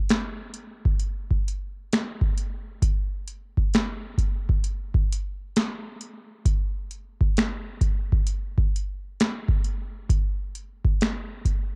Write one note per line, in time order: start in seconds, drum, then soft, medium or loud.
0.09 finger snap medium
0.09 snare loud
0.09 closed hi-hat medium
0.54 closed hi-hat medium
0.85 kick medium
1.00 closed hi-hat medium
1.31 kick medium
1.48 closed hi-hat medium
1.93 finger snap medium
1.93 snare loud
1.93 closed hi-hat medium
2.21 kick medium
2.38 closed hi-hat medium
2.82 kick loud
2.82 closed hi-hat medium
3.28 closed hi-hat medium
3.57 kick medium
3.74 finger snap medium
3.74 snare loud
3.74 closed hi-hat medium
4.18 kick medium
4.18 closed hi-hat medium
4.49 kick medium
4.64 closed hi-hat medium
4.94 kick medium
5.12 closed hi-hat medium
5.56 finger snap medium
5.56 snare loud
5.56 closed hi-hat medium
6.01 closed hi-hat medium
6.46 kick loud
6.46 closed hi-hat medium
6.91 closed hi-hat soft
7.21 kick medium
7.37 finger snap medium
7.37 snare loud
7.37 closed hi-hat medium
7.81 kick medium
7.81 closed hi-hat medium
8.12 kick medium
8.27 closed hi-hat medium
8.58 kick medium
8.76 closed hi-hat medium
9.20 finger snap medium
9.20 snare loud
9.20 closed hi-hat medium
9.48 kick loud
9.64 closed hi-hat medium
10.09 kick loud
10.09 closed hi-hat medium
10.55 closed hi-hat medium
10.85 kick medium
11.01 finger snap medium
11.01 snare loud
11.01 closed hi-hat medium
11.45 kick medium
11.45 closed hi-hat medium